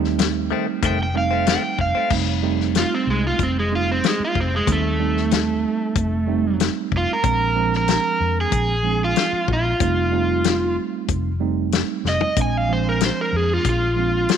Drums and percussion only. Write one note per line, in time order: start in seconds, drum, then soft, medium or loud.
0.04 snare soft
0.19 snare loud
0.19 closed hi-hat medium
0.83 kick loud
0.83 closed hi-hat medium
1.47 snare loud
1.47 closed hi-hat medium
1.79 kick medium
2.10 kick loud
2.10 crash medium
2.60 snare soft
2.75 snare loud
2.75 closed hi-hat medium
3.39 kick loud
3.39 closed hi-hat medium
4.04 snare loud
4.04 closed hi-hat medium
4.35 kick medium
4.67 kick loud
4.67 closed hi-hat medium
5.17 snare soft
5.31 snare loud
5.31 closed hi-hat medium
5.96 kick loud
5.96 closed hi-hat medium
6.60 snare loud
6.60 closed hi-hat medium
6.92 kick medium
7.24 kick loud
7.24 closed hi-hat medium
7.73 snare soft
7.88 snare loud
7.88 closed hi-hat medium
8.52 kick loud
8.52 closed hi-hat medium
9.16 snare loud
9.16 closed hi-hat medium
9.48 kick medium
9.80 kick loud
9.80 closed hi-hat medium
10.44 snare loud
10.44 closed hi-hat medium
11.09 kick loud
11.09 closed hi-hat medium
11.72 snare loud
11.72 closed hi-hat medium
12.05 snare medium
12.21 floor tom medium
12.36 kick loud
12.36 closed hi-hat medium
13.01 snare loud
13.01 closed hi-hat medium
13.65 kick loud
13.65 closed hi-hat medium
14.29 snare loud
14.29 closed hi-hat medium